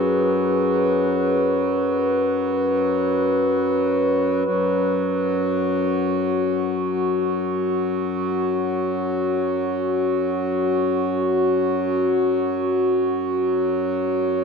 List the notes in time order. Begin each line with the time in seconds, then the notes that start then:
Already playing: F#2 F#3 G#4 B4
4.45 F#2 F#3
5.26 F#4
14.22 C#5